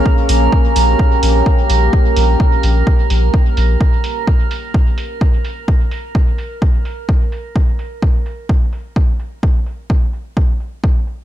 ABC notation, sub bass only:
X:1
M:4/4
L:1/8
Q:"Swing 16ths" 1/4=128
K:Bbdor
V:1 name="Sub bass" clef=bass
z B,,, z B,,, z B,,, z B,,, | z B,,, z B,,, z B,,, z B,,, | z8 | z8 |
z8 | z8 |]